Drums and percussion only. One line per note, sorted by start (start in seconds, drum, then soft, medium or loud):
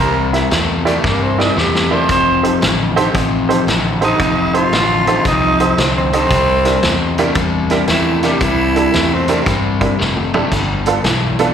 0.34 snare soft
0.34 closed hi-hat medium
0.51 snare loud
0.51 closed hi-hat medium
0.87 closed hi-hat medium
1.04 kick loud
1.04 snare medium
1.40 snare medium
1.58 snare medium
1.75 snare medium
2.09 kick loud
2.09 closed hi-hat medium
2.45 closed hi-hat medium
2.62 snare loud
2.62 closed hi-hat medium
2.97 closed hi-hat medium
3.15 kick loud
3.15 snare soft
3.15 closed hi-hat medium
3.50 closed hi-hat medium
3.68 snare loud
3.68 closed hi-hat medium
4.02 closed hi-hat medium
4.20 kick loud
4.20 closed hi-hat medium
4.55 closed hi-hat medium
4.73 snare loud
4.73 closed hi-hat medium
5.07 closed hi-hat medium
5.25 kick loud
5.25 snare soft
5.25 closed hi-hat medium
5.60 closed hi-hat medium
5.78 snare loud
5.78 closed hi-hat medium
6.13 closed hi-hat medium
6.30 kick loud
6.30 closed hi-hat medium
6.65 snare soft
6.65 closed hi-hat medium
6.83 snare loud
6.83 closed hi-hat medium
7.18 closed hi-hat medium
7.35 kick loud
7.35 closed hi-hat medium
7.70 snare soft
7.70 closed hi-hat medium
7.88 snare medium
7.88 closed hi-hat medium
8.23 snare soft
8.23 closed hi-hat medium
8.41 kick loud
8.41 closed hi-hat medium
8.76 closed hi-hat medium
8.94 snare loud
8.94 closed hi-hat medium
9.28 closed hi-hat medium
9.46 kick loud
9.46 snare soft
9.46 closed hi-hat medium
9.81 kick medium
9.81 closed hi-hat medium
10.00 snare medium
10.17 mid tom medium
10.34 floor tom medium
10.52 kick loud
10.52 closed hi-hat medium
10.52 splash medium
10.86 closed hi-hat medium
11.04 snare loud
11.04 closed hi-hat medium
11.39 closed hi-hat medium